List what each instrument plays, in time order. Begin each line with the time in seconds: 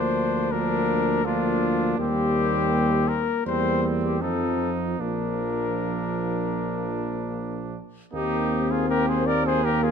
Already playing: tuba D2, trombone F3, french horn A#3, trumpet D4, cornet C5
0.52 trombone F3, french horn A#3, trumpet D4, cornet A#4
1.25 trombone F3, french horn A#3, trumpet D4, cornet F4
1.98 tuba D#2, trombone G3, french horn A#3, trumpet C4, cornet G4
3.08 cornet A#4
3.46 tuba E2, trombone G3, french horn A#3, trumpet C4, cornet C5
3.84 trumpet C4
4.03 cornet G4
4.21 tuba F2, trombone F3, french horn C4, trumpet D#4, cornet A4
4.99 tuba A#1, trombone F3, french horn A#3, trumpet D4, cornet A#4
8.13 tuba D#2, trombone A#3, french horn C4, trumpet D#4, cornet G4
8.71 trumpet F4, cornet G#4
8.89 trombone A#3, trumpet G4, cornet A#4
9.08 trumpet G#4, cornet C5
9.27 trumpet A#4, cornet D5
9.46 trumpet G#4, cornet C5
9.64 french horn A#3, trombone A#3, trumpet G4, cornet A#4
9.83 trumpet F4, cornet G#4